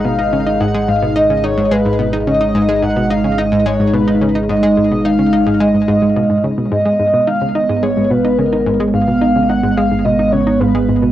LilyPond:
<<
  \new Staff \with { instrumentName = "Soft synth lead" } { \time 4/4 \key gis \dorian \tempo 4 = 108 eis''4 fis''8 eis''8 dis''8 cis''8 b'8. r16 | dis''4 fis''8 eis''8 dis''8 cis''8 b'8. r16 | dis''4 eis''4 dis''4. r8 | dis''4 eis''8 dis''8 cis''8 b'8 ais'8. r16 |
eis''4 fis''8 eis''8 dis''8 cis''8 b'8. r16 | }
  \new Staff \with { instrumentName = "Analog synth pad" } { \time 4/4 \key gis \dorian << { dis'1~ | dis'1~ | dis'1 | b1~ |
b1 | } \\ { gis1~ | gis1~ | gis1~ | gis1~ |
gis1 | } >> }
  \new Staff \with { instrumentName = "Synth arpeggio sound" } { \clef bass \time 4/4 \key gis \dorian b,16 dis'16 cis16 dis'16 gis,16 gis16 gis,16 b,16 dis'16 cis16 dis'16 gis,16 gis16 gis,16 b,16 dis'16 | cis16 dis'16 gis,16 gis16 gis,16 b,16 dis'16 cis16 dis'16 gis,16 gis16 gis,16 b,16 dis'16 cis16 dis'16 | gis,16 gis16 gis,16 b,16 dis'16 cis16 dis'16 gis,16 gis16 gis,16 gis,16 gis,16 b,16 gis,16 cis16 b,16 | gis,16 gis16 gis,16 b,16 dis'16 cis16 dis'16 gis,16 gis16 gis,16 b,16 dis'16 cis16 dis'16 gis,16 gis16 |
gis,16 b,16 dis'16 cis16 dis'16 gis,16 gis16 gis,16 b,16 dis'16 cis16 dis'16 gis,16 gis16 gis,16 b,16 | }
  \new Staff \with { instrumentName = "Analog synth bass" } { \clef bass \time 4/4 \key gis \dorian gis,,1~ | gis,,1~ | gis,,1 | gis,,1~ |
gis,,1 | }
>>